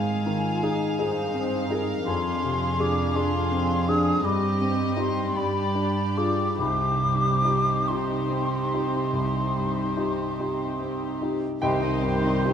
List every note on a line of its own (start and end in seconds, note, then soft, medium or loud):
0.00 0.96 G#2 soft
0.00 1.00 G#2 soft
0.00 0.26 D#3 soft
0.00 0.27 C4 soft
0.00 1.34 C4 soft
0.00 0.63 D#4 soft
0.00 0.63 G#4 soft
0.00 1.00 G#4 soft
0.00 4.19 F5 soft
0.00 1.81 G#5 soft
0.26 0.85 D#3 soft
0.26 0.64 F4 soft
0.63 2.08 D#4 soft
0.63 0.96 D#4 soft
0.63 0.96 G#4 soft
0.99 2.09 G2 soft
0.99 1.32 D#4 soft
0.99 1.32 G#4 soft
0.99 1.36 C5 soft
1.34 1.93 C4 soft
1.34 1.72 C5 soft
1.70 2.04 D#4 soft
1.70 2.04 G#4 soft
1.70 2.08 A#4 soft
2.06 4.19 F2 soft
2.06 4.21 F2 soft
2.06 4.20 D4 soft
2.06 4.23 G#4 soft
2.06 2.82 C6 medium
2.43 3.01 C3 soft
2.80 3.12 D4 soft
2.80 3.12 G#4 soft
2.80 3.17 D6 medium
3.16 3.48 D4 soft
3.16 3.48 G#4 soft
3.16 3.90 C6 medium
3.52 4.09 C4 soft
3.89 4.21 D4 soft
3.89 4.21 G#4 soft
3.89 4.27 D#6 medium
4.23 5.32 G2 soft
4.23 5.35 G2 soft
4.23 5.36 C4 soft
4.23 5.36 G4 soft
4.23 5.35 D#5 soft
4.23 4.98 D6 medium
4.61 5.21 C4 soft
4.97 5.31 D#4 soft
4.97 5.32 G4 soft
4.97 5.38 C6 medium
5.34 6.55 G2 soft
5.34 6.57 G2 soft
5.34 6.59 D4 soft
5.34 6.57 G4 soft
5.34 6.56 D5 soft
5.34 6.19 B5 medium
5.75 6.42 D4 soft
6.17 6.55 F4 soft
6.17 6.56 G#4 soft
6.17 6.58 D6 medium
6.59 9.10 C2 soft
6.59 11.41 C3 soft
6.59 11.37 D#4 soft
6.59 11.37 G4 soft
6.59 11.41 C5 soft
6.59 7.90 D6 medium
7.02 7.70 G2 soft
7.44 7.83 D#4 soft
7.44 7.83 G4 soft
7.88 8.27 D#4 soft
7.88 8.28 G4 soft
7.88 11.22 C6 soft
8.31 8.97 C4 soft
8.74 9.10 D#4 soft
8.74 9.10 G4 soft
9.13 11.58 C2 soft
9.56 10.22 G2 soft
9.97 10.34 D#4 soft
9.97 10.34 G4 soft
10.40 10.76 D#4 soft
10.40 10.76 G4 soft
10.80 11.46 C4 soft
11.22 11.59 D#4 soft
11.22 11.58 G4 soft
11.61 12.53 C2 soft
11.61 12.53 C3 soft
11.61 12.53 D#3 soft
11.61 11.81 D#3 soft
11.61 12.53 G3 soft
11.61 12.53 C4 soft
11.61 11.81 C4 soft
11.61 12.53 D#4 soft
11.61 11.81 G4 soft
11.61 12.53 G4 soft
11.61 12.44 G4 soft
11.61 11.81 C5 soft
11.61 12.53 C5 soft
11.61 12.53 D#5 soft
11.61 12.53 G5 medium
11.61 12.53 C6 soft
11.80 12.04 G3 soft
11.80 12.03 D#4 soft
11.80 12.03 D#5 soft
12.01 12.53 G2 soft
12.01 12.25 D#3 soft
12.01 12.25 C4 soft
12.01 12.24 G4 soft
12.01 12.25 C5 soft
12.24 12.47 G3 soft
12.24 12.47 D#4 soft
12.24 12.47 D#5 soft
12.44 12.53 D#4 soft
12.44 12.53 G4 soft
12.44 12.53 C5 soft
12.48 12.53 D#3 soft
12.48 12.53 C4 soft